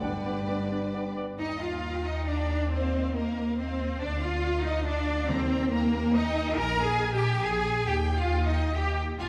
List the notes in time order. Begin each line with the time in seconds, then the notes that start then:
0.01 G1 G2 G3 B3 D4 B4 D5 G5
0.25 B3 D4 D5
0.48 B3 D4 D5
0.71 B3 D4 D5
0.94 B3 D4 D5
1.17 B3 D4 D5
1.38 D#2 D#4 D#5 A#5
1.50 G5
1.60 F4 F5 A#5
1.73 G5
1.83 A#5
1.95 G5
2.05 D#4 D#5 A#5
2.16 G5
2.26 D4 D5 A#5
2.39 G5
2.50 A#5
2.62 G5
2.70 C4 C5 D#5
2.84 F5
2.93 D#5
3.03 F5
3.14 A#3 A#4 D#5
3.26 F5
3.37 D#5
3.48 F5
3.58 C4 C5 D#5
3.69 F5
3.79 D#5
3.90 F5
4.00 D2 D4 D5
4.11 F5
4.22 F4 D5 F5
4.33 F5
4.43 D5
4.54 F5
4.65 D#4 D5 D#5
4.75 F5
4.86 D4 D5
4.97 F5
5.07 D5
5.18 F5
5.28 D#2 D#3 C4 C5 A#5
5.40 G5
5.51 A#5
5.62 G5
5.72 A#3 A#4 A#5
5.83 G5
5.95 A#5
6.05 G5
6.14 D#4 D#5 A#5
6.26 G5
6.37 A#5
6.45 G5
6.56 A#1 A#4 G#5 A#5
6.78 G#5
6.86 G#4 G#5
7.01 A#1 G#5
7.15 G4 G5
7.21 G#5
7.43 A#1 G#4 G#5
7.64 G#5
7.86 D#2 G4 G5
8.09 G5
8.16 F4 F5
8.31 D#2 G5
8.46 D#4 D#5
8.54 G5
8.75 D#2 G4 G5
8.99 G5
9.19 G#1 F4 F5 G#5